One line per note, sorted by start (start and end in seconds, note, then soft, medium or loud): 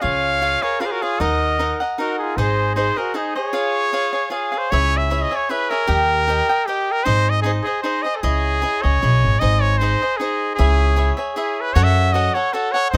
0.01 0.55 C#2 medium
0.01 0.40 F4 medium
0.01 0.40 G#4 medium
0.01 0.41 C#5 medium
0.01 0.65 C#5 medium
0.01 0.64 F5 medium
0.01 0.41 F5 medium
0.41 0.63 F4 soft
0.41 0.62 G#4 soft
0.41 0.61 C#5 medium
0.41 0.61 F5 medium
0.62 0.79 G#4 soft
0.62 0.82 A#4 medium
0.62 0.80 C#5 soft
0.62 0.83 C#5 medium
0.62 0.80 F5 soft
0.80 1.01 F4 medium
0.80 0.87 F4 medium
0.80 1.02 G#4 medium
0.80 0.87 A#4 medium
0.80 1.01 C#5 medium
0.80 1.01 F5 soft
0.85 0.94 G#4 medium
0.85 0.93 C5 soft
0.91 1.05 F#4 medium
0.91 1.04 A#4 medium
1.02 1.23 F4 medium
1.02 1.22 G#4 medium
1.02 1.20 G#4 soft
1.02 1.21 C#5 soft
1.02 1.20 F5 soft
1.20 1.71 D#2 medium
1.20 1.58 D#4 medium
1.20 1.58 A#4 medium
1.20 1.80 A#4 medium
1.20 1.80 D#5 medium
1.20 1.59 D#5 medium
1.20 1.59 F#5 medium
1.59 1.80 D#4 medium
1.59 1.80 A#4 medium
1.59 1.80 D#5 medium
1.59 1.79 F#5 medium
1.80 1.98 A#4 soft
1.80 1.99 D#5 soft
1.80 1.98 F#5 soft
1.98 2.37 D#4 medium
1.98 2.19 F#4 medium
1.98 2.17 A#4 medium
1.98 2.37 A#4 soft
1.98 2.38 D#5 medium
1.98 2.38 F#5 medium
2.19 2.41 F4 medium
2.19 2.39 G#4 medium
2.37 2.88 G#1 medium
2.37 2.75 D#4 medium
2.37 2.76 G#4 medium
2.37 2.77 G#4 medium
2.37 2.75 C5 medium
2.37 2.76 C5 medium
2.37 2.76 D#5 medium
2.76 2.97 D#4 medium
2.76 2.97 G#4 medium
2.76 3.01 G#4 medium
2.76 2.99 C5 medium
2.76 2.96 C5 medium
2.76 2.95 D#5 medium
2.96 3.19 F#4 medium
2.96 3.13 G#4 soft
2.96 3.17 A#4 medium
2.96 3.14 C5 soft
2.96 3.15 D#5 soft
3.14 3.35 D#4 medium
3.14 3.37 D#4 medium
3.14 3.35 G#4 medium
3.14 3.35 C5 soft
3.14 3.34 D#5 medium
3.35 3.52 G#4 soft
3.35 4.29 G#4 medium
3.35 3.53 C5 soft
3.35 4.28 C#5 medium
3.35 3.53 D#5 soft
3.53 3.91 F4 medium
3.53 3.92 G#4 medium
3.53 3.92 C#5 medium
3.53 3.92 F5 medium
3.92 4.14 F4 medium
3.92 4.13 G#4 medium
3.92 4.12 C#5 medium
3.92 4.11 F5 medium
4.13 4.29 G#4 soft
4.13 4.30 C#5 soft
4.13 4.30 F5 soft
4.30 4.52 F4 soft
4.30 4.52 G#4 medium
4.30 4.60 G#4 medium
4.30 4.52 C#5 medium
4.30 4.50 F5 medium
4.52 4.71 G#4 soft
4.52 4.72 C#5 soft
4.52 4.71 F5 soft
4.58 4.72 C5 medium
4.71 5.23 C#2 medium
4.71 5.09 E4 medium
4.71 5.10 G#4 medium
4.71 4.99 C#5 medium
4.71 5.10 C#5 medium
4.71 5.11 E5 medium
4.97 5.24 E5 medium
5.10 5.31 E4 medium
5.10 5.31 G#4 soft
5.10 5.30 C#5 medium
5.10 5.30 E5 medium
5.22 5.38 D#5 medium
5.31 5.49 G#4 soft
5.31 5.49 C#5 soft
5.31 5.50 E5 soft
5.36 5.52 C#5 medium
5.49 5.70 E4 medium
5.49 5.71 G#4 medium
5.49 5.71 B4 medium
5.49 5.70 C#5 medium
5.49 5.69 E5 medium
5.70 5.87 G#4 soft
5.70 6.68 A#4 medium
5.70 5.88 C#5 soft
5.70 5.88 E5 soft
5.87 6.40 D#2 medium
5.87 6.26 G4 medium
5.87 6.27 A#4 medium
5.87 6.29 D#5 medium
5.87 6.28 G5 medium
6.27 6.49 G4 medium
6.27 6.49 A#4 medium
6.27 6.48 D#5 medium
6.27 6.48 G5 medium
6.49 6.67 A#4 soft
6.49 6.67 D#5 soft
6.49 6.67 G5 medium
6.66 6.93 G4 medium
6.66 7.05 G4 medium
6.66 7.06 A#4 medium
6.66 7.05 D#5 medium
6.66 7.06 G5 medium
6.92 7.06 A#4 medium
7.04 7.57 G#1 medium
7.04 7.44 D#4 medium
7.04 7.44 G#4 medium
7.04 7.32 C5 medium
7.04 7.45 C5 medium
7.04 7.45 D#5 medium
7.30 7.42 D#5 medium
7.42 7.65 D#4 medium
7.42 7.52 G#4 medium
7.42 7.65 G#4 soft
7.42 7.65 C5 medium
7.42 7.64 D#5 medium
7.63 7.81 G#4 medium
7.63 7.83 G#4 soft
7.63 7.84 C5 soft
7.63 7.84 D#5 soft
7.83 8.05 D#4 medium
7.83 8.05 G#4 medium
7.83 8.04 C5 medium
7.83 8.03 D#5 medium
8.03 8.22 G#4 soft
8.03 8.23 C5 soft
8.03 8.18 D#5 medium
8.03 8.23 D#5 soft
8.16 8.23 A4 medium
8.22 8.63 C#2 medium
8.22 8.60 E4 medium
8.22 8.84 G#4 medium
8.22 8.62 G#4 medium
8.22 8.62 C#5 medium
8.22 8.62 D#5 medium
8.62 8.83 E4 medium
8.62 8.83 G#4 medium
8.62 8.83 C#5 medium
8.62 8.82 D#5 medium
8.82 9.01 C#2 medium
8.82 9.01 G#4 soft
8.82 9.41 C#5 medium
8.82 9.02 C#5 soft
8.82 9.02 D#5 soft
9.02 9.22 B1 medium
9.02 9.41 E4 medium
9.02 9.41 G#4 medium
9.02 9.42 C#5 medium
9.02 9.41 D#5 medium
9.24 9.40 G#1 medium
9.40 9.93 G#1 medium
9.40 9.80 D#4 medium
9.40 9.80 G#4 medium
9.40 9.80 C5 medium
9.40 9.63 D#5 medium
9.40 9.81 D#5 medium
9.62 9.80 C#5 medium
9.78 10.02 D#4 medium
9.78 10.02 G#4 medium
9.78 10.19 C5 medium
9.78 10.01 C5 medium
9.83 10.01 D#5 medium
10.02 10.19 G#4 soft
10.02 10.20 C5 soft
10.02 10.20 D#5 soft
10.17 10.58 D#4 soft
10.17 10.55 G#4 medium
10.17 10.57 G#4 medium
10.17 10.58 C5 medium
10.17 10.59 D#5 medium
10.55 10.95 E4 medium
10.55 11.13 G#4 medium
10.55 10.96 G#4 medium
10.55 10.96 C#5 medium
10.55 10.97 E5 medium
10.59 11.10 C#2 medium
10.96 11.18 E4 medium
10.96 11.18 G#4 soft
10.96 11.17 C#5 medium
10.96 11.16 E5 medium
11.17 11.35 G#4 soft
11.17 11.36 C#5 soft
11.17 11.36 E5 medium
11.34 11.75 E4 medium
11.34 11.63 G#4 medium
11.34 11.76 G#4 medium
11.34 11.75 C#5 medium
11.34 11.76 E5 medium
11.61 11.75 B4 medium
11.74 12.27 F#2 medium
11.74 12.13 F#4 medium
11.74 12.14 A4 medium
11.74 11.85 C#5 loud
11.74 12.14 C#5 medium
11.74 12.14 F#5 medium
11.84 12.14 E5 medium
12.13 12.36 F#4 medium
12.13 12.35 A4 medium
12.13 12.34 C#5 medium
12.13 12.36 D#5 medium
12.13 12.34 F#5 medium
12.35 12.52 A4 soft
12.35 12.55 C#5 medium
12.35 12.53 C#5 soft
12.35 12.53 F#5 soft
12.53 12.75 F#4 soft
12.53 12.74 A4 medium
12.53 12.74 C#5 medium
12.53 12.73 F#5 medium
12.72 12.93 A4 soft
12.72 12.91 C#5 medium
12.72 12.94 C#5 soft
12.72 12.93 F#5 soft
12.91 12.97 G#2 medium
12.91 12.97 D#4 medium
12.91 12.97 G#4 medium
12.91 12.97 C5 medium